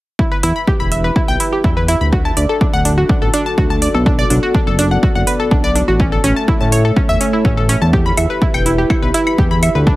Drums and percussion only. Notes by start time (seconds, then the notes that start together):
0.19 kick
0.43 open hi-hat
0.67 kick
0.92 open hi-hat
1.16 kick
1.40 open hi-hat
1.64 kick
1.88 open hi-hat
2.13 kick
2.37 open hi-hat
2.61 kick
2.85 open hi-hat
3.09 kick
3.34 open hi-hat
3.58 kick
3.82 open hi-hat
4.06 kick
4.30 open hi-hat
4.55 kick
4.79 open hi-hat
5.03 kick
5.27 open hi-hat
5.51 kick
5.76 open hi-hat
6.00 kick
6.24 open hi-hat
6.48 kick
6.72 open hi-hat
6.96 kick
7.21 open hi-hat
7.45 kick
7.69 open hi-hat
7.93 kick
8.17 open hi-hat, claves
8.42 kick
8.54 claves
8.66 open hi-hat
8.90 kick, claves
9.14 open hi-hat
9.27 claves
9.38 kick
9.63 open hi-hat, claves
9.87 kick